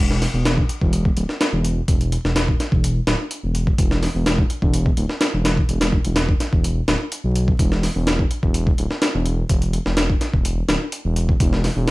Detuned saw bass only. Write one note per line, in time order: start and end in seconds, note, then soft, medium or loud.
0.00 0.26 E1 loud
0.34 0.62 E1 loud
0.82 1.10 E1 loud
1.17 1.24 D1 medium
1.53 1.81 E1 loud
1.88 2.17 E1 loud
2.24 2.53 E1 loud
2.72 3.00 E1 loud
3.07 3.15 D1 medium
3.44 3.72 E1 loud
3.79 4.07 E1 loud
4.15 4.43 E1 loud
4.62 4.91 E1 loud
4.98 5.05 D1 medium
5.34 5.62 E1 loud
5.69 5.98 E1 loud
6.05 6.33 E1 medium
6.53 6.81 E1 loud
6.88 6.96 D1 medium
7.24 7.53 B1 medium
7.59 7.88 E1 medium
7.96 8.24 E1 loud
8.43 8.72 E1 medium
8.78 8.86 D1 medium
9.15 9.43 E1 medium
9.49 9.79 E1 loud
9.86 10.14 E1 loud
10.34 10.62 E1 loud
10.69 10.77 D1 medium
11.05 11.33 E1 loud
11.40 11.69 E1 loud
11.76 11.91 E1 medium